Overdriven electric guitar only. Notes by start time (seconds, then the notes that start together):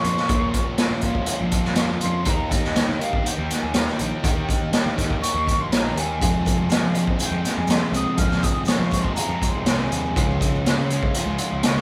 Already playing: A#2 F3
0.04 A#3 C#4 F4
0.30 A#2 F3 A#3 C#4 F4
0.78 F3 A#3 C#4 F4
1.05 A#3 C#4 F4
1.27 F3 A#3 C#4 F4
1.76 A#2 F3 A#3 C#4 F4
2.01 A#3 C#4 F4
2.24 D#3 A#3 D#4 G4
2.74 D#3 A#3 D#4 G4
2.98 A#3 D#4 G4
3.22 D#3 A#3 D#4 G4
3.73 D#3 A#3 D#4 G4
3.98 A#3 D#4 G4
4.23 D#3 A#3 D#4 G4
4.71 D#3 A#3 D#4 G4
4.96 A#3 D#4 G4
5.20 D#3 A#3 D#4 G4
5.72 D#3 A#3 D#4 G4
5.96 A#3 D#4 G4
6.20 F2 C3 F3 G#3 C4 G#4
6.69 F3 G#3 C4 G#4
6.94 F3 G#3 C4 G#4
7.19 F3 G#3 C4 G#4
7.69 F2 C3 F3 G#3 C4 G#4
7.94 F3 G#3 C4 G#4
8.18 F2 C3 F3 G#3 C4 G#4
8.68 F3 G#3 C4 G#4
8.93 F3 G#3 C4 G#4
9.17 F3 G#3 C4 G#4
9.67 F2 C3 F3 G#3 C4 G#4
9.90 F3 G#3 C4 G#4
10.15 C#3 F3 G#3 C#4 F4
10.65 F3 G#3 C#4 F4
10.90 G#3 C#4 F4
11.15 F3 G#3 C#4 F4
11.64 C#3 F3 G#3 C#4 F4